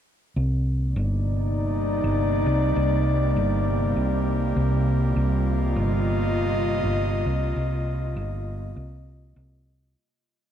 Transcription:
0.36 C2 C3
0.48 A#3
0.64 G3
0.81 D#4 D5
0.96 G1
2.04 G1
2.46 C2
2.76 C2
3.36 G1
3.96 C2
4.56 C2
4.78 F4
5.16 C2
5.32 D#5
5.76 G1
6.83 G1
7.26 C2
7.56 C2
8.16 G1
8.76 C2
9.36 C2

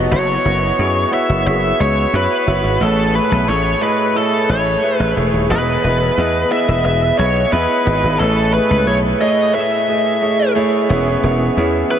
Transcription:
Already playing: B2 B3 D#4 F#4 C#5 D#5
0.11 F#1 B3 E4 F#4 C#5
0.45 F#1 B3 E4 F#4 D#5
0.78 F#2 B3 E4 F#4 G#4
1.11 B3 E4 F#4 C#5 E5
1.29 F#1
1.45 F#1 B3 E4 F#4 G#4 E5
1.79 C#2 B3 E4 F#4 C#5
2.13 F#2 B3 E4 F#4 B4 C#5
2.46 F#1 B3 E4 F#4 C#5
2.64 G#1
2.80 A1 A2 A3 E4 G#4 A4 C#5
3.14 A3 E4 G#4 B4 C#5
3.31 B1
3.48 A1 A3 E4 G#4 C#5
3.81 A3 E4 G#4 B4 D#5
4.15 A3 E4 G#4 A4 C#5
4.49 A1 A3 E4 G#4 C#5
4.82 A3 E4 G#4 B4
4.97 A1 B4
5.16 E1 A3 E4 G#4 C#5
5.33 D#1
5.49 E1 E3 B3 E4 G#4 B4 D#5
5.83 E1 B3 E4 G#4 D#5
6.17 E2 B3 E4 G#4 D#5
6.51 B3 E4 G#4 D#5 E5
6.68 E1
6.84 E1 B3 E4 G#4 D#5 E5
7.19 B1 B3 E4 G#4 C#5 D#5
7.51 E2 B3 E4 G#4 B4 D#5
7.85 G#1 B3 E4 G#4 D#5
8.03 G#1
8.19 A1 A2 A3 E4 G#4 A4 C#5
8.53 A3 E4 G#4 B4
8.70 C#2
8.87 B1 A3 E4 G#4 C#5
9.20 A3 E4 G#4 C#5 D#5
9.54 A3 E4 G#4 C#5 E5
9.88 A3 E4 G#4 D#5
10.21 A3 E4 G#4 C#5
10.55 A3 E4 G#4 C#5
10.89 E1 E3 B3 C#4 E4 G#4 C#5
11.23 E1 B3 C#4 E4 G#4 C#5
11.57 E2 B3 C#4 E4 G#4 E5
11.90 B3 C#4 E4 G#4 B4 C#5

